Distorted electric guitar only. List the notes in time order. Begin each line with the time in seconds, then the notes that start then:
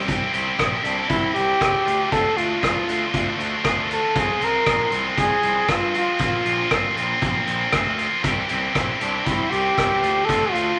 0.07 C4 E4 G4
0.33 E4 G4
0.59 C4 E4 G4
0.84 E4 G4
1.60 C4 E4 G4
1.86 F3 A3 D4 F4
2.12 F3 A3 D4 F4
2.37 A3 D4 F4
2.62 F3 A3 D4 F4
2.88 A3 D4 F4
3.64 F3 A3 D4 F4
3.89 A3 D4 F4
4.15 F3 G#3 C4 F4
4.41 G#3 C4 F4
4.66 F3 G#3 C4 F4
4.91 G#3 C4 F4
5.68 F3 G#3 C4 F4
5.93 G#3 C4 F4
6.19 F3 A#3 C4 F4
6.44 A#3 C4 F4
6.71 F3 A#3 C4 F4
6.96 A#3 C4 F4
7.73 F3 A#3 C4 F4
7.98 A#3 C4 F4
8.23 E3 C4 E4 G4
8.48 C4 E4 G4
8.74 E3 C4 E4 G4
9.00 C4 E4 G4
9.77 E3 C4 E4 G4
10.02 F3 A3 D4 F4
10.28 F3 A3 D4 F4
10.54 A3 D4 F4